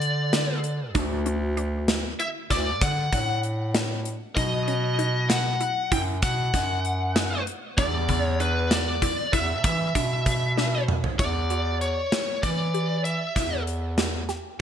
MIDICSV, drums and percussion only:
0, 0, Header, 1, 2, 480
1, 0, Start_track
1, 0, Tempo, 620476
1, 733, Time_signature, 11, 3, 24, 8
1, 11302, End_track
2, 0, Start_track
2, 0, Title_t, "Drums"
2, 12, Note_on_c, 9, 42, 57
2, 90, Note_off_c, 9, 42, 0
2, 255, Note_on_c, 9, 38, 99
2, 255, Note_on_c, 9, 42, 77
2, 332, Note_off_c, 9, 38, 0
2, 332, Note_off_c, 9, 42, 0
2, 493, Note_on_c, 9, 42, 55
2, 571, Note_off_c, 9, 42, 0
2, 733, Note_on_c, 9, 42, 74
2, 735, Note_on_c, 9, 36, 97
2, 811, Note_off_c, 9, 42, 0
2, 813, Note_off_c, 9, 36, 0
2, 974, Note_on_c, 9, 42, 55
2, 1052, Note_off_c, 9, 42, 0
2, 1217, Note_on_c, 9, 42, 58
2, 1294, Note_off_c, 9, 42, 0
2, 1456, Note_on_c, 9, 38, 97
2, 1456, Note_on_c, 9, 42, 76
2, 1533, Note_off_c, 9, 38, 0
2, 1533, Note_off_c, 9, 42, 0
2, 1699, Note_on_c, 9, 42, 61
2, 1776, Note_off_c, 9, 42, 0
2, 1938, Note_on_c, 9, 36, 65
2, 1938, Note_on_c, 9, 38, 30
2, 1938, Note_on_c, 9, 42, 56
2, 2015, Note_off_c, 9, 38, 0
2, 2015, Note_off_c, 9, 42, 0
2, 2016, Note_off_c, 9, 36, 0
2, 2176, Note_on_c, 9, 42, 79
2, 2178, Note_on_c, 9, 36, 104
2, 2253, Note_off_c, 9, 42, 0
2, 2255, Note_off_c, 9, 36, 0
2, 2418, Note_on_c, 9, 36, 70
2, 2419, Note_on_c, 9, 42, 55
2, 2495, Note_off_c, 9, 36, 0
2, 2496, Note_off_c, 9, 42, 0
2, 2656, Note_on_c, 9, 42, 54
2, 2733, Note_off_c, 9, 42, 0
2, 2898, Note_on_c, 9, 38, 108
2, 2898, Note_on_c, 9, 42, 84
2, 2975, Note_off_c, 9, 38, 0
2, 2975, Note_off_c, 9, 42, 0
2, 3136, Note_on_c, 9, 42, 57
2, 3213, Note_off_c, 9, 42, 0
2, 3378, Note_on_c, 9, 36, 92
2, 3378, Note_on_c, 9, 42, 76
2, 3455, Note_off_c, 9, 36, 0
2, 3455, Note_off_c, 9, 42, 0
2, 3618, Note_on_c, 9, 42, 60
2, 3695, Note_off_c, 9, 42, 0
2, 3859, Note_on_c, 9, 42, 61
2, 3937, Note_off_c, 9, 42, 0
2, 4098, Note_on_c, 9, 38, 98
2, 4098, Note_on_c, 9, 42, 80
2, 4175, Note_off_c, 9, 38, 0
2, 4175, Note_off_c, 9, 42, 0
2, 4336, Note_on_c, 9, 42, 64
2, 4414, Note_off_c, 9, 42, 0
2, 4577, Note_on_c, 9, 36, 71
2, 4578, Note_on_c, 9, 42, 60
2, 4655, Note_off_c, 9, 36, 0
2, 4655, Note_off_c, 9, 42, 0
2, 4814, Note_on_c, 9, 42, 84
2, 4817, Note_on_c, 9, 36, 105
2, 4891, Note_off_c, 9, 42, 0
2, 4894, Note_off_c, 9, 36, 0
2, 5057, Note_on_c, 9, 36, 79
2, 5058, Note_on_c, 9, 38, 33
2, 5058, Note_on_c, 9, 42, 57
2, 5135, Note_off_c, 9, 36, 0
2, 5135, Note_off_c, 9, 38, 0
2, 5135, Note_off_c, 9, 42, 0
2, 5297, Note_on_c, 9, 42, 57
2, 5375, Note_off_c, 9, 42, 0
2, 5538, Note_on_c, 9, 38, 103
2, 5538, Note_on_c, 9, 42, 71
2, 5615, Note_off_c, 9, 38, 0
2, 5615, Note_off_c, 9, 42, 0
2, 5779, Note_on_c, 9, 42, 55
2, 5857, Note_off_c, 9, 42, 0
2, 6017, Note_on_c, 9, 36, 105
2, 6017, Note_on_c, 9, 42, 68
2, 6094, Note_off_c, 9, 42, 0
2, 6095, Note_off_c, 9, 36, 0
2, 6255, Note_on_c, 9, 42, 52
2, 6257, Note_on_c, 9, 36, 65
2, 6332, Note_off_c, 9, 42, 0
2, 6334, Note_off_c, 9, 36, 0
2, 6499, Note_on_c, 9, 42, 57
2, 6577, Note_off_c, 9, 42, 0
2, 6738, Note_on_c, 9, 38, 103
2, 6738, Note_on_c, 9, 42, 77
2, 6815, Note_off_c, 9, 38, 0
2, 6815, Note_off_c, 9, 42, 0
2, 6979, Note_on_c, 9, 36, 67
2, 6979, Note_on_c, 9, 42, 60
2, 7056, Note_off_c, 9, 36, 0
2, 7057, Note_off_c, 9, 42, 0
2, 7219, Note_on_c, 9, 36, 75
2, 7219, Note_on_c, 9, 42, 55
2, 7296, Note_off_c, 9, 36, 0
2, 7297, Note_off_c, 9, 42, 0
2, 7459, Note_on_c, 9, 36, 105
2, 7459, Note_on_c, 9, 42, 87
2, 7536, Note_off_c, 9, 36, 0
2, 7536, Note_off_c, 9, 42, 0
2, 7699, Note_on_c, 9, 36, 66
2, 7700, Note_on_c, 9, 42, 66
2, 7776, Note_off_c, 9, 36, 0
2, 7777, Note_off_c, 9, 42, 0
2, 7937, Note_on_c, 9, 42, 59
2, 7939, Note_on_c, 9, 36, 71
2, 8015, Note_off_c, 9, 42, 0
2, 8016, Note_off_c, 9, 36, 0
2, 8181, Note_on_c, 9, 38, 57
2, 8258, Note_off_c, 9, 38, 0
2, 8420, Note_on_c, 9, 45, 80
2, 8498, Note_off_c, 9, 45, 0
2, 8539, Note_on_c, 9, 43, 73
2, 8617, Note_off_c, 9, 43, 0
2, 8657, Note_on_c, 9, 42, 67
2, 8658, Note_on_c, 9, 36, 89
2, 8735, Note_off_c, 9, 36, 0
2, 8735, Note_off_c, 9, 42, 0
2, 8898, Note_on_c, 9, 42, 54
2, 8976, Note_off_c, 9, 42, 0
2, 9139, Note_on_c, 9, 42, 52
2, 9216, Note_off_c, 9, 42, 0
2, 9378, Note_on_c, 9, 38, 104
2, 9378, Note_on_c, 9, 42, 76
2, 9455, Note_off_c, 9, 38, 0
2, 9455, Note_off_c, 9, 42, 0
2, 9617, Note_on_c, 9, 36, 64
2, 9619, Note_on_c, 9, 42, 53
2, 9695, Note_off_c, 9, 36, 0
2, 9696, Note_off_c, 9, 42, 0
2, 9859, Note_on_c, 9, 42, 53
2, 9936, Note_off_c, 9, 42, 0
2, 10097, Note_on_c, 9, 42, 67
2, 10175, Note_off_c, 9, 42, 0
2, 10336, Note_on_c, 9, 36, 63
2, 10337, Note_on_c, 9, 38, 31
2, 10337, Note_on_c, 9, 42, 58
2, 10413, Note_off_c, 9, 36, 0
2, 10414, Note_off_c, 9, 38, 0
2, 10414, Note_off_c, 9, 42, 0
2, 10578, Note_on_c, 9, 42, 55
2, 10655, Note_off_c, 9, 42, 0
2, 10813, Note_on_c, 9, 38, 92
2, 10813, Note_on_c, 9, 42, 67
2, 10891, Note_off_c, 9, 38, 0
2, 10891, Note_off_c, 9, 42, 0
2, 11055, Note_on_c, 9, 38, 29
2, 11055, Note_on_c, 9, 42, 53
2, 11132, Note_off_c, 9, 38, 0
2, 11132, Note_off_c, 9, 42, 0
2, 11302, End_track
0, 0, End_of_file